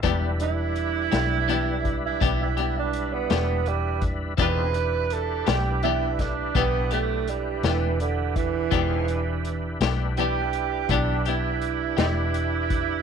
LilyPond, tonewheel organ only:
\new Staff \with { instrumentName = "Tonewheel organ" } { \time 12/8 \key e \minor \tempo 4. = 55 <g d' e' b'>1. | <c' dis' f' gis'>8 <d' e' g' b'>1~ <d' e' g' b'>4. | <dis' gis' c'' f''>8 <d' e' g' b'>1~ <d' e' g' b'>4. | }